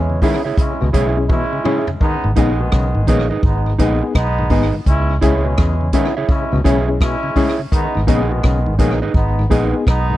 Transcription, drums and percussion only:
0.22 kick medium
0.22 open hi-hat medium
0.58 kick loud
0.58 hi-hat pedal medium
0.94 kick loud
0.94 closed hi-hat medium
1.29 kick loud
1.29 high tom medium
1.65 mid tom medium
1.87 floor tom medium
2.01 kick loud
2.36 kick medium
2.36 closed hi-hat medium
2.72 kick loud
2.72 cross-stick loud
3.07 kick medium
3.07 closed hi-hat medium
3.43 kick loud
3.79 kick medium
3.79 closed hi-hat medium
4.15 kick loud
4.15 cross-stick loud
4.50 kick medium
4.50 open hi-hat medium
4.86 kick loud
4.86 hi-hat pedal medium
5.22 kick medium
5.22 closed hi-hat medium
5.58 kick loud
5.58 cross-stick medium
5.93 kick medium
5.93 closed hi-hat medium
6.29 kick loud
6.65 kick medium
6.65 closed hi-hat medium
7.01 kick loud
7.01 cross-stick loud
7.36 kick medium
7.36 open hi-hat medium
7.72 kick loud
7.72 hi-hat pedal medium
8.08 kick medium
8.08 closed hi-hat medium
8.43 kick medium
8.43 cross-stick loud
8.79 kick medium
8.79 closed hi-hat medium
9.14 kick loud
9.51 kick medium
9.51 closed hi-hat medium
9.87 kick loud
9.87 cross-stick loud

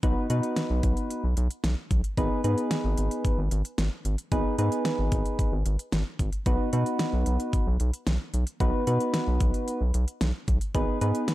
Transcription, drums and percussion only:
0.03 kick loud
0.03 closed hi-hat medium
0.30 closed hi-hat medium
0.43 closed hi-hat medium
0.56 snare loud
0.56 closed hi-hat medium
0.83 kick medium
0.83 closed hi-hat medium
0.97 closed hi-hat soft
1.10 closed hi-hat medium
1.37 closed hi-hat medium
1.50 closed hi-hat medium
1.64 snare loud
1.64 closed hi-hat medium
1.91 kick medium
1.91 closed hi-hat medium
2.04 closed hi-hat medium
2.17 kick loud
2.17 closed hi-hat medium
2.44 closed hi-hat medium
2.58 closed hi-hat medium
2.71 snare loud
2.71 closed hi-hat medium
2.97 closed hi-hat medium
3.11 closed hi-hat medium
3.25 kick medium
3.25 closed hi-hat medium
3.51 closed hi-hat medium
3.65 closed hi-hat medium
3.78 snare loud
3.78 closed hi-hat medium
4.05 closed hi-hat medium
4.18 closed hi-hat medium
4.32 kick loud
4.32 closed hi-hat medium
4.58 closed hi-hat medium
4.72 closed hi-hat medium
4.85 snare loud
4.85 closed hi-hat medium
5.12 kick medium
5.12 closed hi-hat medium
5.26 closed hi-hat soft
5.39 kick medium
5.39 closed hi-hat medium
5.66 closed hi-hat medium
5.79 closed hi-hat medium
5.92 snare loud
5.92 closed hi-hat medium
6.19 kick medium
6.19 closed hi-hat medium
6.33 closed hi-hat medium
6.46 kick loud
6.46 closed hi-hat medium
6.73 closed hi-hat medium
6.86 closed hi-hat medium
6.99 snare loud
6.99 closed hi-hat medium
7.26 closed hi-hat medium
7.40 closed hi-hat soft
7.53 kick medium
7.53 closed hi-hat medium
7.80 closed hi-hat medium
7.93 closed hi-hat medium
8.07 snare loud
8.07 closed hi-hat medium
8.34 closed hi-hat medium
8.47 closed hi-hat medium
8.60 kick loud
8.60 closed hi-hat medium
8.87 closed hi-hat medium
9.00 closed hi-hat medium
9.14 snare loud
9.14 closed hi-hat medium
9.40 kick medium
9.40 closed hi-hat medium
9.54 closed hi-hat medium
9.68 closed hi-hat medium
9.94 closed hi-hat medium
10.08 closed hi-hat medium
10.21 snare loud
10.21 closed hi-hat medium
10.48 kick medium
10.48 closed hi-hat medium
10.61 closed hi-hat medium
10.75 kick loud
10.75 closed hi-hat medium
11.01 closed hi-hat medium
11.15 closed hi-hat medium
11.28 snare loud
11.28 closed hi-hat medium

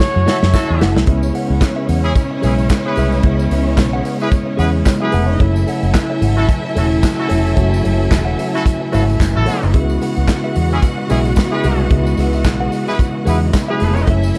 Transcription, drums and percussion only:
0.00 snare medium
0.00 tambourine medium
0.28 snare loud
0.28 tambourine medium
0.43 snare medium
0.54 kick loud
0.54 snare loud
0.54 tambourine loud
0.81 snare loud
0.81 tambourine soft
0.97 snare loud
1.07 kick loud
1.07 closed hi-hat medium
1.23 tambourine medium
1.35 open hi-hat medium
1.35 tambourine soft
1.61 kick loud
1.61 snare loud
1.61 clap medium
1.61 closed hi-hat medium
1.61 tambourine medium
1.89 open hi-hat medium
1.89 tambourine soft
2.04 tambourine soft
2.15 kick loud
2.15 closed hi-hat medium
2.15 tambourine medium
2.43 open hi-hat medium
2.43 tambourine medium
2.58 tambourine soft
2.69 kick loud
2.69 snare medium
2.69 clap medium
2.69 closed hi-hat medium
2.69 tambourine loud
2.95 open hi-hat medium
2.95 tambourine medium
3.12 tambourine soft
3.23 kick loud
3.23 closed hi-hat medium
3.39 tambourine medium
3.51 open hi-hat medium
3.51 tambourine soft
3.77 kick loud
3.77 snare loud
3.77 clap medium
3.77 closed hi-hat medium
3.77 tambourine medium
4.05 open hi-hat medium
4.05 tambourine soft
4.20 tambourine soft
4.32 kick loud
4.32 closed hi-hat medium
4.32 tambourine medium
4.59 open hi-hat medium
4.59 tambourine medium
4.85 kick loud
4.85 snare loud
4.85 clap medium
4.85 closed hi-hat medium
4.85 tambourine loud
5.12 open hi-hat medium
5.12 tambourine medium
5.40 kick loud
5.40 closed hi-hat medium
5.56 tambourine medium
5.68 open hi-hat medium
5.68 tambourine soft
5.83 tambourine soft
5.94 kick loud
5.94 snare loud
5.94 clap loud
5.94 closed hi-hat medium
5.94 tambourine loud
6.22 open hi-hat medium
6.22 tambourine soft
6.49 kick loud
6.49 closed hi-hat medium
6.49 tambourine medium
6.76 open hi-hat medium
6.76 tambourine medium
7.03 kick loud
7.03 snare loud
7.03 clap medium
7.03 closed hi-hat medium
7.03 tambourine loud
7.29 open hi-hat medium
7.29 tambourine medium
7.47 tambourine soft
7.57 kick loud
7.57 closed hi-hat medium
7.74 tambourine medium
7.85 open hi-hat medium
7.85 tambourine soft
8.11 kick loud
8.11 snare loud
8.11 clap loud
8.11 closed hi-hat medium
8.11 tambourine loud
8.39 open hi-hat medium
8.39 tambourine soft
8.55 snare soft
8.55 tambourine soft
8.66 kick loud
8.66 closed hi-hat medium
8.66 tambourine medium
8.93 open hi-hat medium
8.93 tambourine medium
9.10 tambourine soft
9.20 kick loud
9.20 snare loud
9.20 clap medium
9.20 closed hi-hat medium
9.20 tambourine loud
9.46 open hi-hat medium
9.46 tambourine soft
9.63 tambourine soft
9.74 kick loud
9.74 closed hi-hat medium
9.90 tambourine medium
10.02 open hi-hat medium
10.02 tambourine soft
10.17 tambourine soft
10.28 kick loud
10.28 snare loud
10.28 clap loud
10.28 closed hi-hat medium
10.28 tambourine medium
10.56 open hi-hat medium
10.56 tambourine soft
10.71 tambourine soft
10.82 kick loud
10.82 closed hi-hat medium
10.82 tambourine medium
11.10 open hi-hat medium
11.10 tambourine medium
11.25 tambourine soft
11.36 kick loud
11.36 snare loud
11.36 clap medium
11.36 closed hi-hat medium
11.36 tambourine loud
11.63 open hi-hat medium
11.63 tambourine medium
11.91 kick loud
11.91 closed hi-hat medium
12.07 tambourine medium
12.17 open hi-hat medium
12.17 tambourine medium
12.33 tambourine soft
12.44 kick loud
12.44 snare loud
12.44 clap medium
12.44 closed hi-hat medium
12.44 tambourine loud
12.72 open hi-hat medium
12.72 tambourine soft
12.87 snare soft
12.87 tambourine soft
12.99 kick loud
12.99 closed hi-hat medium
12.99 tambourine soft
13.27 open hi-hat medium
13.27 tambourine medium
13.53 kick loud
13.53 snare loud
13.53 clap medium
13.53 closed hi-hat medium
13.53 tambourine loud
13.80 open hi-hat medium
13.80 tambourine medium
13.97 tambourine soft
14.07 kick loud
14.07 closed hi-hat medium
14.23 tambourine medium
14.35 open hi-hat medium
14.35 tambourine medium

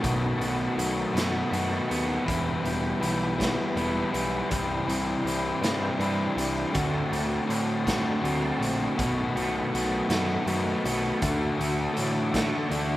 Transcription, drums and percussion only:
0.04 kick loud
0.04 closed hi-hat medium
0.41 closed hi-hat medium
0.79 closed hi-hat medium
1.17 snare loud
1.17 closed hi-hat medium
1.53 closed hi-hat medium
1.91 closed hi-hat medium
2.28 kick loud
2.28 closed hi-hat medium
2.65 closed hi-hat medium
3.03 closed hi-hat medium
3.40 kick medium
3.40 snare loud
3.40 closed hi-hat medium
3.77 closed hi-hat medium
4.14 closed hi-hat medium
4.51 kick loud
4.51 closed hi-hat medium
4.89 closed hi-hat medium
5.27 closed hi-hat medium
5.63 snare loud
5.63 closed hi-hat medium
6.00 closed hi-hat medium
6.38 closed hi-hat medium
6.74 kick loud
6.74 closed hi-hat medium
7.13 closed hi-hat medium
7.50 closed hi-hat medium
7.87 kick medium
7.87 snare loud
7.87 closed hi-hat medium
8.25 closed hi-hat medium
8.62 closed hi-hat medium
8.99 kick loud
8.99 closed hi-hat medium
9.37 closed hi-hat medium
9.75 closed hi-hat medium
10.10 snare loud
10.10 closed hi-hat medium
10.47 closed hi-hat medium
10.85 closed hi-hat medium
11.22 kick loud
11.22 closed hi-hat medium
11.61 closed hi-hat medium
11.97 closed hi-hat medium
12.34 kick medium
12.34 snare loud
12.34 closed hi-hat medium
12.71 closed hi-hat medium

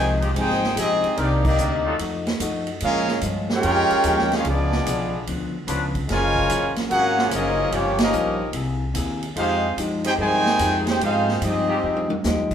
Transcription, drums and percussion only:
0.22 ride medium
0.36 ride medium
0.50 snare soft
0.64 snare medium
0.77 hi-hat pedal medium
0.77 ride medium
1.04 ride soft
1.17 ride medium
1.45 kick loud
1.45 crash medium
1.58 hi-hat pedal medium
1.99 ride medium
2.27 snare medium
2.27 ride soft
2.40 hi-hat pedal medium
2.40 ride medium
2.67 ride medium
2.80 ride medium
3.08 snare soft
3.21 hi-hat pedal medium
3.21 ride medium
3.49 snare medium
3.63 ride medium
3.90 ride medium
4.04 hi-hat pedal medium
4.04 ride medium
4.19 snare soft
4.32 snare medium
4.32 ride medium
4.45 ride medium
4.72 snare soft
4.86 hi-hat pedal medium
4.86 ride medium
5.27 ride medium
5.68 hi-hat pedal medium
5.68 ride medium
5.95 kick medium
5.95 ride medium
6.09 snare soft
6.09 ride medium
6.36 kick medium
6.50 hi-hat pedal medium
6.50 ride medium
6.76 snare medium
6.76 ride medium
6.91 ride medium
7.18 snare medium
7.31 hi-hat pedal medium
7.31 ride medium
7.72 ride medium
7.98 snare loud
7.98 ride medium
8.13 hi-hat pedal medium
8.53 ride medium
8.95 hi-hat pedal medium
8.95 ride medium
9.22 ride medium
9.36 ride medium
9.78 hi-hat pedal medium
9.78 ride medium
10.04 ride medium
10.46 snare medium
10.59 hi-hat pedal medium
10.59 ride medium
10.87 snare medium
10.87 ride medium
11.01 ride medium
11.28 snare soft
11.42 hi-hat pedal medium
11.42 ride medium
11.96 high tom medium
12.10 high tom medium
12.24 snare medium
12.24 hi-hat pedal medium
12.51 kick medium
12.51 crash medium

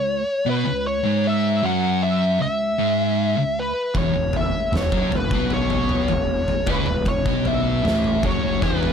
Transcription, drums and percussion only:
3.95 kick loud
3.95 floor tom medium
4.33 floor tom medium
4.73 snare medium
4.73 mid tom medium
4.92 kick loud
5.12 floor tom medium
5.12 mid tom medium
5.31 kick loud
5.50 floor tom medium
5.70 floor tom medium
5.89 mid tom medium
6.08 floor tom medium
6.48 floor tom medium
6.67 kick loud
6.67 floor tom medium
6.86 mid tom medium
7.05 kick loud
7.05 floor tom medium
7.26 kick loud
7.45 floor tom medium
7.85 snare medium
7.85 mid tom medium
8.04 floor tom medium
8.23 kick loud
8.23 floor tom medium
8.23 mid tom medium
8.62 kick medium
8.62 floor tom medium
8.83 floor tom medium

